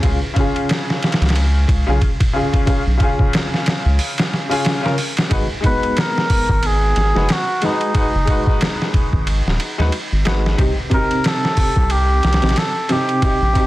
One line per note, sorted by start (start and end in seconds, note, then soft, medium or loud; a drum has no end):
0.02 0.20 C#2 medium
0.02 0.16 C#3 medium
0.02 0.16 C#4 medium
0.02 0.17 F4 medium
0.02 0.17 G#4 medium
0.02 kick loud
0.02 ride medium
0.34 1.81 C#3 medium
0.34 1.82 C#4 medium
0.34 kick medium
0.34 ride medium
0.38 1.84 F4 medium
0.38 1.85 G#4 medium
0.56 ride soft
0.69 snare loud
0.69 ride medium
0.90 snare medium
1.03 snare medium
1.03 ride medium
1.12 snare medium
1.12 ride medium
1.21 1.66 C#2 loud
1.21 snare medium
1.21 ride medium
1.29 snare medium
1.29 ride medium
1.36 ride medium
1.68 1.85 C#2 medium
1.68 kick loud
1.68 ride medium
1.87 2.00 B1 loud
1.87 1.97 C#3 medium
1.87 1.97 C#4 medium
1.87 1.98 F4 medium
1.87 1.98 G#4 medium
2.01 kick medium
2.01 ride medium
2.20 kick loud
2.20 ride medium
2.33 2.63 C#3 medium
2.33 2.64 C#4 medium
2.33 2.64 F4 medium
2.33 2.65 G#4 medium
2.53 kick medium
2.53 ride medium
2.66 2.80 C#3 medium
2.66 2.80 C#4 medium
2.66 2.81 F4 medium
2.66 2.81 G#4 medium
2.66 kick medium
2.66 ride medium
2.87 2.99 B1 medium
2.97 4.45 C#3 medium
2.97 4.46 C#4 medium
2.97 4.47 F4 medium
2.97 kick medium
2.97 ride medium
3.03 4.48 G#4 medium
3.19 kick medium
3.33 snare loud
3.33 ride medium
3.54 snare soft
3.66 snare medium
3.66 ride medium
3.86 3.99 C#2 medium
3.99 open hi-hat medium
4.18 snare loud
4.18 ride medium
4.33 snare soft
4.49 4.79 C#3 medium
4.49 4.79 C#4 medium
4.49 4.80 F4 medium
4.49 4.80 G#4 medium
4.49 open hi-hat medium
4.65 snare loud
4.65 ride medium
4.83 4.93 C#3 medium
4.83 4.93 C#4 medium
4.83 4.94 F4 medium
4.83 4.94 A#4 medium
4.83 snare soft
4.98 open hi-hat medium
5.17 snare medium
5.17 ride medium
5.29 5.48 G#1 medium
5.29 5.43 G#3 medium
5.29 5.44 D#4 medium
5.29 5.44 F#4 medium
5.29 5.45 B4 medium
5.29 kick loud
5.29 ride medium
5.61 7.09 G#3 medium
5.61 7.10 D#4 medium
5.61 7.11 F#4 medium
5.61 kick medium
5.61 ride medium
5.66 7.12 B3 medium
5.66 6.01 B4 loud
5.83 ride soft
5.97 6.68 A#4 medium
5.97 snare loud
5.97 ride medium
6.18 snare medium
6.30 kick medium
6.30 open hi-hat medium
6.49 6.93 G#1 medium
6.49 kick medium
6.63 7.33 G#4 loud
6.63 ride medium
6.96 7.13 G#1 loud
6.96 snare soft
6.96 ride medium
7.14 7.27 F#1 loud
7.14 7.24 G#3 medium
7.14 7.25 D#4 medium
7.14 7.25 F#4 medium
7.14 7.25 B4 medium
7.14 snare soft
7.29 7.67 F#4 medium
7.29 snare loud
7.29 ride medium
7.61 7.91 G#3 medium
7.61 7.92 D#4 medium
7.61 8.95 D#4 medium
7.61 7.92 F#4 medium
7.61 7.93 B4 medium
7.61 snare soft
7.61 ride medium
7.81 ride soft
7.94 8.07 G#3 medium
7.94 8.08 D#4 medium
7.94 8.08 F#4 medium
7.94 8.09 B4 medium
7.94 kick loud
7.94 ride medium
8.15 8.26 F#1 medium
8.25 9.73 G#3 medium
8.25 9.74 D#4 medium
8.25 kick medium
8.25 ride medium
8.29 9.75 F#4 medium
8.29 9.76 B4 medium
8.47 kick medium
8.61 snare loud
8.61 ride medium
8.82 snare soft
8.94 kick medium
8.94 ride medium
9.13 9.41 G#1 medium
9.13 kick medium
9.27 ride medium
9.47 9.58 D#1 medium
9.47 snare soft
9.60 ride medium
9.78 9.91 D#2 medium
9.78 9.88 G#3 medium
9.78 9.88 D#4 medium
9.78 9.89 F#4 medium
9.78 9.90 B4 medium
9.78 snare medium
9.92 ride medium
10.12 10.24 G#1 medium
10.25 10.55 G#1 medium
10.25 10.55 G#3 medium
10.25 10.55 D#4 medium
10.25 10.56 F#4 medium
10.25 10.56 B4 medium
10.25 snare loud
10.25 ride medium
10.46 snare medium
10.58 10.75 C2 medium
10.58 10.71 C3 medium
10.58 10.72 C4 medium
10.58 10.72 D#4 medium
10.58 10.73 G4 medium
10.58 kick loud
10.58 ride medium
10.90 12.37 C3 medium
10.90 12.38 C4 medium
10.90 12.39 D#4 medium
10.90 kick medium
10.90 ride medium
10.94 12.40 G4 medium
10.94 11.28 A#4 loud
11.11 ride soft
11.24 11.93 A4 loud
11.24 snare loud
11.24 ride medium
11.45 snare medium
11.57 kick medium
11.57 open hi-hat medium
11.76 12.21 C2 medium
11.76 kick medium
11.90 12.59 G4 loud
11.90 ride medium
12.23 12.41 C2 medium
12.23 snare medium
12.23 ride medium
12.33 snare medium
12.33 ride medium
12.42 12.55 A#1 loud
12.42 12.52 C3 medium
12.42 12.52 C4 medium
12.42 12.53 D#4 medium
12.42 12.53 G4 loud
12.42 snare medium
12.42 ride medium
12.49 snare medium
12.49 ride medium
12.56 12.93 A4 loud
12.56 snare loud
12.56 ride medium
12.89 13.19 C3 medium
12.89 13.19 C4 medium
12.89 13.20 D#4 medium
12.89 13.67 G4 loud
12.89 13.20 G4 medium
12.89 snare soft
12.89 ride medium
13.09 ride soft
13.22 13.35 C3 medium
13.22 13.36 C4 medium
13.22 13.36 D#4 medium
13.22 13.37 G4 medium
13.22 kick loud
13.22 ride medium
13.42 13.54 A#1 medium
13.53 13.67 C3 medium
13.53 13.67 C4 medium
13.53 kick medium
13.53 ride medium
13.57 13.67 D#4 medium
13.57 13.67 G4 medium